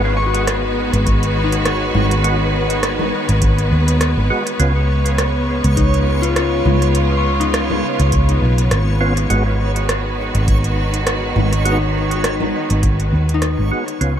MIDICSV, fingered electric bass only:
0, 0, Header, 1, 2, 480
1, 0, Start_track
1, 0, Tempo, 588235
1, 1830, Time_signature, 4, 2, 24, 8
1, 11585, End_track
2, 0, Start_track
2, 0, Title_t, "Fingered electric bass"
2, 0, Program_c, 0, 33
2, 0, Note_on_c, 0, 32, 99
2, 737, Note_off_c, 0, 32, 0
2, 761, Note_on_c, 0, 32, 96
2, 1568, Note_off_c, 0, 32, 0
2, 1590, Note_on_c, 0, 32, 91
2, 2530, Note_off_c, 0, 32, 0
2, 2683, Note_on_c, 0, 32, 99
2, 3030, Note_on_c, 0, 39, 90
2, 3042, Note_off_c, 0, 32, 0
2, 3379, Note_off_c, 0, 39, 0
2, 3405, Note_on_c, 0, 32, 93
2, 3497, Note_off_c, 0, 32, 0
2, 3750, Note_on_c, 0, 37, 96
2, 4579, Note_off_c, 0, 37, 0
2, 4605, Note_on_c, 0, 37, 99
2, 5410, Note_off_c, 0, 37, 0
2, 5431, Note_on_c, 0, 37, 96
2, 6370, Note_off_c, 0, 37, 0
2, 6524, Note_on_c, 0, 37, 92
2, 6850, Note_off_c, 0, 37, 0
2, 6870, Note_on_c, 0, 35, 96
2, 7085, Note_off_c, 0, 35, 0
2, 7110, Note_on_c, 0, 32, 96
2, 7570, Note_off_c, 0, 32, 0
2, 7591, Note_on_c, 0, 32, 98
2, 8419, Note_off_c, 0, 32, 0
2, 8444, Note_on_c, 0, 32, 92
2, 9249, Note_off_c, 0, 32, 0
2, 9270, Note_on_c, 0, 32, 92
2, 10210, Note_off_c, 0, 32, 0
2, 10367, Note_on_c, 0, 32, 94
2, 10710, Note_on_c, 0, 39, 95
2, 10722, Note_off_c, 0, 32, 0
2, 11059, Note_off_c, 0, 39, 0
2, 11086, Note_on_c, 0, 32, 99
2, 11178, Note_off_c, 0, 32, 0
2, 11431, Note_on_c, 0, 37, 99
2, 11585, Note_off_c, 0, 37, 0
2, 11585, End_track
0, 0, End_of_file